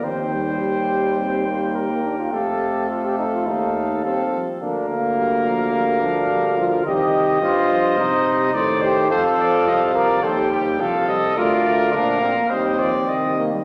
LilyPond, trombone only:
\new Staff \with { instrumentName = "Trombone" } { \time 4/4 \key c \dorian \tempo 4 = 106 c'8 g2~ g8. bes16 d'16 f'16 | g'4 f'16 g'16 ees'16 f'16 ees'4 c'8. r16 | d'8 bes2 d'4 f'8 | g'4 f'4 ees'4. g'8 |
a'4. bes'8 a'8 r4. | f'4 d'8 c'16 bes16 c'4. bes16 g16 | }